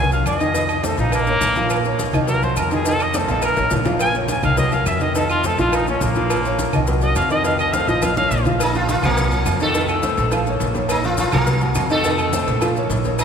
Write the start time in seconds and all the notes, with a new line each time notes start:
Already playing: C2
0.00 G#5
0.11 F#3 F#4 A#4 F5, high conga, low agogo, maracas
0.26 F2 D#5, cowbell, high conga, low timbale, low agogo, claves, maracas
0.40 D#3 D#4 D#5, cowbell, high conga, maracas
0.54 D#3 D#4 D#5, cowbell, high conga, low agogo, maracas
0.69 high conga, low agogo, claves, maracas
0.83 A3 A4 C5, cowbell, high conga, low timbale, maracas
0.97 A#1 F3 D#4 F4 F5, cowbell, high conga, maracas
1.12 A#3, cowbell, high conga, low agogo, claves, maracas
1.27 A#3 A#4 C#5, high conga, maracas
1.41 A#1, cowbell, high conga, low timbale, low agogo, maracas
1.55 F3 F4 F5, cowbell, high conga, maracas
1.70 cowbell, high conga, low agogo, claves, maracas
1.85 A#3 A#4 C#5, high conga, maracas
1.99 cowbell, high conga, low timbale, low agogo, maracas
2.13 C2 D#3 D#4 D#5, high conga, low conga, low agogo, claves, maracas
2.27 F#3 F#4 A#4, cowbell, high conga, maracas
2.42 F#3 F#4 A#4 C5, high conga, low agogo, maracas
2.56 F2 A#4, cowbell, high conga, low timbale, low agogo, claves, maracas
2.71 D#3 D#4 G#4 D#5, cowbell, high conga, maracas
2.85 D#3 D#4 A4 D#5, cowbell, high conga, low agogo, maracas
2.99 D#5, high conga, low agogo, claves, maracas
3.14 A3 A4 C5, cowbell, high conga, high timbale, maracas
3.28 A#1 F3 F4 A4 F5, cowbell, high conga, high timbale, maracas
3.42 A#4, cowbell, high conga, low timbale, low agogo, claves, maracas
3.56 A1 A#3 A#4 C#5, high bongo, high conga, low timbale, maracas
3.71 A#1, cowbell, low bongo, low conga, low agogo, maracas
3.85 F3 F4 F5, cowbell, low bongo, low conga, low timbale, maracas
3.99 G#5, cowbell, high conga, low agogo, claves, maracas
4.14 A#3 A#4 C#5, high conga, maracas
4.28 G#5, cowbell, high conga, low timbale, low agogo, maracas
4.43 C2 D#3 D#4 D#5 F5, high conga, low conga, low agogo, claves, maracas
4.57 F#3 F#4 A#4 D#5, cowbell, high conga, low conga, maracas
4.72 F#3 F#4 A#4 F5, high conga, low agogo, maracas
4.86 F2 E5, cowbell, high conga, low timbale, low agogo, claves, maracas
5.00 D#3 D#4 D#5, cowbell, high conga, maracas
5.15 D#3 D#4 A4 D#5, cowbell, high conga, low agogo, maracas
5.29 F4, high conga, low agogo, claves, maracas
5.44 A3 A4 C5, cowbell, high conga, low timbale, maracas
5.58 A#1 F3 F4 F5, cowbell, high conga, maracas
5.72 D#4, cowbell, high conga, low agogo, claves, maracas
5.87 A#3 C#4 A#4 C#5, high conga, maracas
6.01 A#1 A#3, cowbell, high conga, low timbale, low agogo, maracas
6.15 F3 F4 F5, cowbell, high conga, maracas
6.30 cowbell, low agogo, claves, maracas
6.45 A#3 A#4 C#5, high conga, maracas
6.59 cowbell, high conga, low timbale, low agogo, maracas
6.73 C2 D#3 D#4 D#5, high conga, low conga, low agogo, claves, maracas
6.87 F#3 F#4 A#4, cowbell, high conga, maracas
7.01 F#3 F#4 A#4 D#5, high conga, low agogo, maracas
7.15 F2 F5, cowbell, high conga, low timbale, low agogo, claves, maracas
7.30 D#3 D#4 D#5, cowbell, high conga, maracas
7.44 D#3 D#4 D#5 F5, cowbell, high conga, low agogo, maracas
7.59 D#5, high conga, low agogo, claves, maracas
7.73 A3 A4 C5 F5, cowbell, high conga, low timbale, maracas
7.88 A#1 F3 F4 D#5 F5, cowbell, high conga, maracas
8.02 F5, cowbell, high conga, high timbale, low agogo, claves, maracas
8.17 A#3 A#4 C#5 F5, high conga, maracas
8.31 A#1, cowbell, low agogo, maracas
8.45 F3 F4 F5, cowbell, low conga, low timbale, maracas
8.60 D#4 D#5, cowbell, high conga, low agogo, claves, maracas
8.75 F3 F4 F5, high conga, maracas
8.88 F4, cowbell, high conga, low timbale, low agogo, maracas
9.03 C2 F#3 A#3 F#4 A#4, high conga, low conga, low agogo, claves, maracas
9.17 cowbell, high conga, maracas
9.32 F#3 F#4 A#4, high conga, low agogo, maracas
9.46 F2, cowbell, high conga, low timbale, low agogo, claves, maracas
9.60 D#3 A3 D#4 A4 D#5, cowbell, high conga, maracas
9.74 D#3 D#4 D#5, cowbell, high conga, low agogo, maracas
9.88 high conga, low agogo, claves, maracas
10.03 A3 A4 C5, cowbell, high conga, low timbale, maracas
10.17 A#1, cowbell, high conga, maracas
10.31 F3 F4 F5, cowbell, high conga, low agogo, claves, maracas
10.46 A#3 A#4 C#5, high conga, maracas
10.60 A#1, cowbell, high conga, low timbale, low agogo, maracas
10.75 A#3 A#4 C#5, cowbell, high conga, maracas
10.89 D#4 D#5, cowbell, high conga, low agogo, claves, maracas
11.03 F3 F4 F5, high conga, maracas
11.17 F4, cowbell, high conga, low timbale, low agogo, maracas
11.32 C2 F#3 A#3 F#4 A#4, high conga, low conga, low agogo, claves, maracas
11.47 cowbell, high conga, maracas
11.61 F#3 F#4 A#4, high conga, low agogo, maracas
11.75 F2, cowbell, high conga, low timbale, low agogo, claves, maracas
11.90 D#3 A3 D#4 A4 D#5, cowbell, high conga, maracas
12.04 D#3 D#4 D#5, cowbell, high conga, low agogo, maracas
12.18 high conga, low agogo, claves, maracas
12.32 A3 A4 C5, cowbell, high conga, low timbale, maracas
12.47 A#1, cowbell, high conga, maracas
12.61 F3 F4 F5, cowbell, high conga, low agogo, claves, maracas
12.76 A#3 A#4 C#5, high conga, maracas
12.90 A#1, cowbell, high conga, low timbale, low agogo, maracas
13.04 A#3 A#4 C#5, cowbell, high conga, maracas
13.19 D#4 D#5, cowbell, high conga, low agogo, claves, maracas